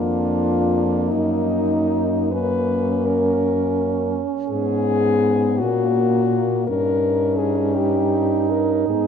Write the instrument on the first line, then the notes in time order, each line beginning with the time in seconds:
french horn
Already playing: F2 A#3 D4 F4
1.08 F#2 D#4
2.31 A#3 C#4 B4
3.06 A#4
4.48 G#2 B3 G#4
5.59 A#2 A#3 F#4
6.67 G2 C#4 D#4 A#4
7.38 G#4
7.75 G4
8.50 A#4
8.87 G#2 B3 G#4